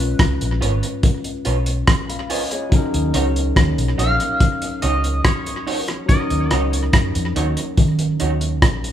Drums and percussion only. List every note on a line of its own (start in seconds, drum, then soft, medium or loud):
0.19 kick loud
0.19 cross-stick loud
0.19 closed hi-hat medium
0.41 closed hi-hat medium
0.62 closed hi-hat medium
0.83 closed hi-hat medium
1.03 kick loud
1.03 closed hi-hat medium
1.24 closed hi-hat soft
1.45 closed hi-hat medium
1.66 closed hi-hat medium
1.87 kick loud
1.87 cross-stick loud
1.87 closed hi-hat medium
2.10 closed hi-hat medium
2.30 open hi-hat medium
2.51 closed hi-hat medium
2.72 kick loud
2.72 closed hi-hat medium
2.94 closed hi-hat medium
3.14 closed hi-hat medium
3.36 closed hi-hat soft
3.56 kick loud
3.56 cross-stick loud
3.56 closed hi-hat medium
3.78 closed hi-hat medium
3.99 closed hi-hat medium
4.20 closed hi-hat medium
4.40 kick loud
4.40 closed hi-hat medium
4.62 closed hi-hat medium
4.82 closed hi-hat medium
5.04 closed hi-hat medium
5.25 kick loud
5.25 cross-stick loud
5.25 closed hi-hat loud
5.46 closed hi-hat medium
5.67 open hi-hat medium
5.88 cross-stick medium
5.88 closed hi-hat soft
6.09 kick loud
6.09 closed hi-hat medium
6.30 closed hi-hat medium
6.51 cross-stick medium
6.51 closed hi-hat medium
6.73 closed hi-hat medium
6.93 kick loud
6.93 cross-stick loud
6.93 closed hi-hat medium
7.15 closed hi-hat medium
7.36 closed hi-hat medium
7.57 closed hi-hat medium
7.77 kick loud
7.77 closed hi-hat medium
7.99 closed hi-hat medium
8.20 closed hi-hat medium
8.41 closed hi-hat medium
8.62 kick loud
8.62 cross-stick loud
8.62 closed hi-hat loud
8.84 closed hi-hat medium